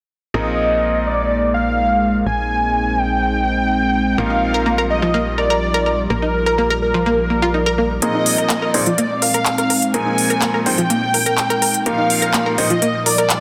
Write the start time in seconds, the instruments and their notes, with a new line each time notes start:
0.34 analog synth bass A#1, grand piano A#2 F3 C4 D#4 G#4 A#4, ambient pad G#3 A#3 D#4, analog synth lead D#5
1.06 analog synth lead D5
1.54 analog synth lead F5
2.26 analog synth bass A#1, ambient pad C4, analog synth lead G#5
2.98 analog synth lead G5
4.18 analog synth bass A#1, grand piano A#2 F3 A#3 D#4 G4 A#4, ambient pad F3 G3, synth pluck A#3, analog synth lead F5
4.30 synth pluck D#4
4.54 synth pluck A#4
4.66 synth pluck A#3
4.78 synth pluck A#4
4.90 analog synth lead D#5
5.02 synth pluck F3
5.14 synth pluck A#3
5.38 synth pluck A#4, analog synth lead D5
5.50 synth pluck A#4
5.74 synth pluck A#4
5.86 synth pluck A#4
6.10 analog synth bass A#1, synth pluck A#3, analog synth lead A#4, ambient pad D5
6.22 synth pluck D#4
6.46 synth pluck A#4
6.58 synth pluck A#3
6.70 synth pluck A#4
6.82 analog synth lead A#4
6.94 synth pluck F3
7.06 synth pluck A#3
7.30 synth pluck A#3
7.42 synth pluck F4
7.54 synth pluck D#4
7.66 synth pluck A#4
7.78 synth pluck A#3
8.02 ambient pad A#2 G#3 C4 D#4, grand piano A#2 F3 C4 D#4 G#4 A#4, synth pluck A#3, analog synth lead D#5, violin section D#5, closed hi-hat
8.14 synth pluck D#4
8.26 open hi-hat
8.38 synth pluck A#4, closed hi-hat
8.50 synth pluck A#3, clap, closed hi-hat
8.62 synth pluck A#4
8.74 grand piano A#2 F3 C4 D#4 G#4 C5, analog synth lead D5, violin section D5, open hi-hat
8.86 synth pluck F3, closed hi-hat
8.98 synth pluck A#3, closed hi-hat
9.22 synth pluck A#4, analog synth lead F5, violin section F5, open hi-hat
9.34 synth pluck A#4, closed hi-hat
9.46 clap, closed hi-hat
9.58 synth pluck A#4, closed hi-hat
9.70 synth pluck A#4, open hi-hat
9.82 closed hi-hat
9.94 grand piano A#2 F3 C4 D#4 G#4 A#4, synth pluck A#3, analog synth lead G#5, violin section G#5, closed hi-hat
10.06 synth pluck D#4
10.18 open hi-hat
10.30 synth pluck A#4, closed hi-hat
10.42 synth pluck A#3, clap, closed hi-hat
10.54 synth pluck A#4
10.66 grand piano A#2 F3 C4 D#4 G#4 C5, violin section G5, analog synth lead G5, open hi-hat
10.78 synth pluck F3, closed hi-hat
10.90 synth pluck A#3, closed hi-hat
11.14 synth pluck A#4, open hi-hat
11.26 synth pluck A#4, closed hi-hat
11.38 clap, closed hi-hat
11.50 synth pluck A#4, closed hi-hat
11.62 synth pluck A#4, open hi-hat
11.74 closed hi-hat
11.86 grand piano A#2 F3 A#3 D#4 G4 A#4, ambient pad F3 G3, synth pluck A#3, analog synth lead F5, violin section F5, closed hi-hat
11.98 synth pluck D#4
12.10 open hi-hat
12.22 synth pluck A#4, closed hi-hat
12.34 synth pluck A#3, clap, closed hi-hat
12.46 synth pluck A#4
12.58 grand piano A#2 F3 A#3 D#4 G4 C5, analog synth lead D#5, violin section D#5, open hi-hat
12.70 synth pluck F3, closed hi-hat
12.82 synth pluck A#3, closed hi-hat
13.06 synth pluck A#4, analog synth lead D5, violin section D5, open hi-hat
13.18 synth pluck A#4, closed hi-hat
13.30 clap, closed hi-hat